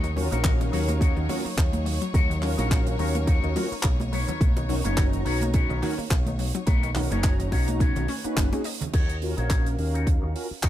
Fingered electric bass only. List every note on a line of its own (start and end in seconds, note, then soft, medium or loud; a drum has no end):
0.00 0.28 D#2 loud
0.32 0.70 A#1 loud
0.73 1.13 D#2 medium
1.17 1.27 D#2 loud
1.45 muted fingered electric bass stroke soft
1.58 1.98 D#2 loud
2.14 2.54 D#2 loud
2.58 2.96 A#1 loud
2.99 3.39 D#2 loud
3.43 3.54 D#2 loud
3.72 muted fingered electric bass stroke soft
3.84 4.24 B1 loud
4.41 4.81 B1 loud
4.85 5.22 F#1 loud
5.26 5.66 B1 medium
5.70 5.80 B1 loud
5.98 muted fingered electric bass stroke soft
6.11 6.51 B1 loud
6.67 7.07 B1 loud
7.11 7.49 F#1 loud
7.52 7.92 B1 loud
7.96 8.07 B1 loud
8.24 muted fingered electric bass stroke soft
8.37 8.50 F#1 loud
8.94 9.34 D#2 medium
9.38 9.75 A#1 loud
9.79 10.19 D#2 medium
10.23 10.33 D#2 medium
10.51 muted fingered electric bass stroke soft
10.63 10.69 D#2 loud